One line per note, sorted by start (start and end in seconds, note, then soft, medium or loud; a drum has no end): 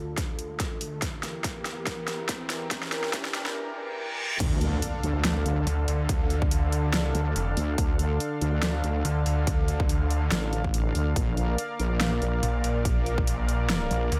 0.00 0.99 D2 medium
0.00 0.99 D3 medium
0.00 0.99 F4 medium
0.00 0.99 A4 medium
0.00 riser medium
0.18 kick medium
0.18 snare medium
0.18 closed hi-hat medium
0.39 closed hi-hat medium
0.60 kick medium
0.60 snare medium
0.60 closed hi-hat medium
0.81 open hi-hat medium
1.02 4.37 E2 medium
1.02 4.37 E3 medium
1.02 4.37 G4 medium
1.02 4.37 A#4 medium
1.02 kick medium
1.02 snare medium
1.02 closed hi-hat medium
1.23 snare medium
1.23 closed hi-hat medium
1.44 kick medium
1.44 snare medium
1.44 closed hi-hat medium
1.65 snare medium
1.65 closed hi-hat medium
1.87 kick medium
1.87 snare medium
1.87 closed hi-hat medium
2.08 snare medium
2.08 closed hi-hat medium
2.29 kick loud
2.29 snare medium
2.29 closed hi-hat medium
2.50 snare medium
2.50 open hi-hat medium
2.71 kick loud
2.71 snare medium
2.71 closed hi-hat medium
2.83 snare medium
2.92 snare medium
2.92 closed hi-hat medium
3.04 snare medium
3.13 kick loud
3.13 snare loud
3.13 closed hi-hat medium
3.25 snare medium
3.34 snare loud
3.34 closed hi-hat medium
3.46 snare medium
3.56 reverse cymbal medium
4.40 4.81 D2 loud
4.40 11.12 D3 medium
4.40 11.12 D4 medium
4.40 11.12 A4 medium
4.40 14.20 F5 medium
4.40 kick loud
4.40 closed hi-hat medium
4.40 crash loud
4.40 impact medium
4.61 closed hi-hat medium
4.82 closed hi-hat medium
5.03 5.44 D2 loud
5.03 closed hi-hat medium
5.25 snare loud
5.25 closed hi-hat medium
5.46 5.65 D2 loud
5.46 closed hi-hat medium
5.67 5.86 D2 loud
5.67 closed hi-hat medium
5.88 6.50 D2 loud
5.88 open hi-hat loud
6.09 kick loud
6.09 closed hi-hat medium
6.30 closed hi-hat medium
6.42 kick loud
6.51 6.95 D2 loud
6.51 closed hi-hat medium
6.72 closed hi-hat medium
6.94 7.13 C#2 loud
6.94 snare loud
6.94 closed hi-hat medium
7.15 7.34 D2 loud
7.15 closed hi-hat medium
7.36 7.55 F1 loud
7.36 closed hi-hat medium
7.57 7.77 D2 medium
7.57 open hi-hat medium
7.78 8.19 D2 loud
7.78 kick loud
7.78 closed hi-hat medium
7.99 closed hi-hat medium
8.20 closed hi-hat medium
8.42 8.82 D2 medium
8.42 closed hi-hat medium
8.63 snare loud
8.63 closed hi-hat medium
8.84 9.03 D2 loud
8.84 closed hi-hat medium
9.05 9.24 D2 medium
9.05 closed hi-hat medium
9.26 9.88 D2 loud
9.26 open hi-hat medium
9.47 kick loud
9.47 closed hi-hat medium
9.68 closed hi-hat medium
9.80 kick loud
9.89 10.30 D2 loud
9.89 closed hi-hat medium
10.11 closed hi-hat soft
10.32 10.94 A1 medium
10.32 snare loud
10.32 closed hi-hat medium
10.53 closed hi-hat medium
10.64 kick medium
10.74 closed hi-hat medium
10.95 11.15 D2 loud
10.95 open hi-hat medium
11.16 11.57 A#1 loud
11.16 14.20 A#3 medium
11.16 14.20 A#4 medium
11.16 14.20 D5 medium
11.16 kick loud
11.16 closed hi-hat medium
11.37 closed hi-hat medium
11.58 closed hi-hat medium
11.80 12.20 A#1 loud
11.80 closed hi-hat soft
12.01 snare loud
12.01 closed hi-hat medium
12.22 12.41 A#1 loud
12.22 closed hi-hat medium
12.43 12.63 A#1 loud
12.43 closed hi-hat medium
12.64 13.26 A#1 loud
12.64 open hi-hat medium
12.85 kick loud
12.85 closed hi-hat medium
13.06 closed hi-hat medium
13.18 kick loud
13.27 13.89 A#1 loud
13.27 closed hi-hat medium
13.49 closed hi-hat medium
13.70 snare loud
13.70 closed hi-hat medium
13.91 14.10 A#1 loud
13.91 closed hi-hat medium
14.12 14.20 D2 loud
14.12 closed hi-hat medium